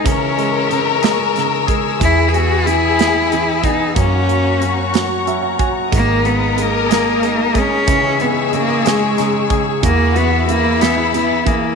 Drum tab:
HH |xxxxxx|xxxxxx|xxxxxx|xxxxxx|
SD |---oo-|---o--|---o--|---o--|
BD |o----o|o----o|o----o|o----o|

HH |xxxxxx|xxxxxx|
SD |---oo-|---o--|
BD |o----o|o----o|